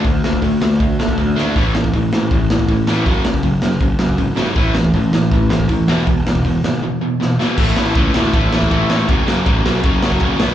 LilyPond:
<<
  \new Staff \with { instrumentName = "Distorted electric guitar" } { \clef bass \time 4/4 \key a \major \tempo 4 = 159 <d a>8 <d a>8 <d a>8 <d a>8 <d a>8 <d a>8 <d a>8 <d a d'>8 | <a, e a>8 <a, e>8 <a, e>8 <a, e>8 <a, e>8 <a, e>8 <a, e>8 <a, e a>8 | <fis, cis fis>8 <fis, cis>8 <fis, cis>8 <fis, cis>8 <fis, cis>8 <fis, cis>8 <fis, cis>8 <fis, cis fis>8 | <a, e a>8 <a, e>8 <a, e>8 <a, e>8 <a, e>8 <a, e>8 <a, e>8 <e, b, e>8 |
<e, b,>8 <e, b,>8 <e, b,>8 <e, b,>8 <e, b,>8 <e, b,>8 <e, b,>8 <e, b, e>8 | <a, e a>8 <a, e a>8 <a, e a>8 <a, e a>8 <a, e a>8 <a, e a>8 <a, e a>8 <a, e a>8 | <fis, cis fis>8 <fis, cis fis>8 <fis, cis fis>8 <fis, cis fis>8 <fis, cis fis>8 <fis, cis fis>8 <fis, cis fis>8 <b, fis b>8 | }
  \new Staff \with { instrumentName = "Picked electric bass" } { \clef bass \time 4/4 \key a \major d,8 d,8 d,8 d,8 d,8 d8 d,4 | a,,4 a,,8 a,,8 a,,8 a,,8 a,,8 a,,8 | fis,,8 fis,,8 fis,,8 fis,,8 fis,,8 fis,8 gis,,4 | a,,4 a,,8 a,,8 a,,8 a,,8 a,,8 e,,8 |
e,,8 e,,8 e,,8 gis,,8 r2 | a,,8 a,,8 cis,8 d,8 a,,8 a,,8 a,,8 a,,8 | fis,,8 fis,,8 a,,8 b,,8 fis,,8 fis,,8 fis,,8 b,,8 | }
  \new DrumStaff \with { instrumentName = "Drums" } \drummode { \time 4/4 <hho bd>8 sn16 bd16 <hho bd>8 sn8 <hho bd>8 sn16 bd16 <hho bd>8 sn8 | <hho bd>8 sn16 bd16 <hho bd>8 sn8 <hho bd>8 sn16 bd16 <hho bd>8 sn8 | <hho bd>8 sn16 bd16 <hho bd>8 sn8 <hho bd>8 sn16 bd16 <hho bd>8 sn8 | <hho bd>8 sn16 bd16 <hho bd>8 sn8 <hho bd>8 sn16 bd16 <hho bd>8 sn8 |
<hho bd>8 sn16 bd16 <hho bd>8 sn8 r4 sn8 sn8 | <cymc bd>8 sn8 <bd cymr>8 sn8 <bd cymr>8 sn16 bd16 <bd cymr>8 sn8 | <bd cymr>8 sn8 <bd cymr>8 sn8 <bd cymr>8 sn16 bd16 <bd cymr>8 sn8 | }
>>